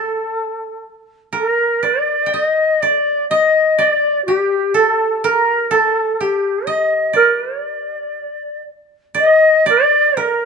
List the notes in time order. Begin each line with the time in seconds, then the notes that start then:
Already playing: A4
1.33 A#4
1.83 D5
2.26 G5
2.32 D#5
2.80 D5
3.28 D#5
3.78 D5
4.25 G4
4.74 A4
5.23 A#4
5.71 A4
6.14 A4
6.20 G4
6.67 D#5
7.13 A#4 D5
7.63 D5
9.15 D5 D#5
9.27 D#5
9.66 D5
10.17 A#4